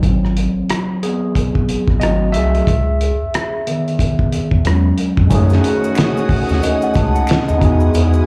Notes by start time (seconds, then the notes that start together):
0.03 G#1 E3 F#3 C4, kick, closed hi-hat
0.25 cross-stick
0.37 closed hi-hat
0.58 A1
0.70 cross-stick, closed hi-hat
1.03 B3 G#4, closed hi-hat
1.35 kick, closed hi-hat
1.55 kick
1.69 A1, closed hi-hat
1.88 A1, kick, cross-stick
2.00 G#1 F#3 A3 C4 F#4 D#5, cross-stick, closed hi-hat
2.32 C2 G#4 E5, closed hi-hat
2.55 closed hi-hat
2.67 C#2, kick, closed hi-hat
3.01 closed hi-hat
3.22 E2
3.34 cross-stick, closed hi-hat
3.67 D#3 E3 B3, closed hi-hat
3.88 closed hi-hat
3.99 kick, closed hi-hat
4.19 kick
4.32 E2, closed hi-hat
4.51 E2, kick
4.65 E2 F#3 G#3 C#4, cross-stick, closed hi-hat
4.98 closed hi-hat
5.17 F2, kick
5.27 D#3 G#3 A3 C#4 F#4 F#5 G#5, kick, maracas
5.31 F#2 A3 D#4 G#4 D#6, closed hi-hat
5.50 snare, maracas
5.64 closed hi-hat
5.84 maracas
5.95 finger snap, snare, closed hi-hat, maracas
6.17 maracas
6.29 D#2, kick, open hi-hat
6.49 D#2, snare, maracas
6.63 D#5, closed hi-hat, maracas
6.82 F#5, maracas
6.94 C#2 A5, kick, closed hi-hat, maracas
7.15 F#5, maracas
7.27 finger snap, snare, closed hi-hat, maracas
7.48 D#2 D#5, maracas
7.57 B2 G#3 B3 D#4 E4 F#4 F#5 G#5 D#6
7.61 E2 F#4 G#4, kick, closed hi-hat
7.80 maracas
7.94 E2, closed hi-hat, maracas
8.13 maracas